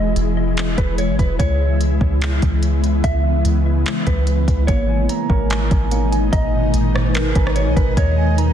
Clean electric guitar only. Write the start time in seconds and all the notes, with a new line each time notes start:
Already playing: D#5
0.78 B4
0.98 C#5
1.19 B4
1.39 C#5
3.04 E5
4.07 B4
4.67 C#5
6.33 D#5
7.36 B4
7.56 C#5
7.76 B4
7.97 C#5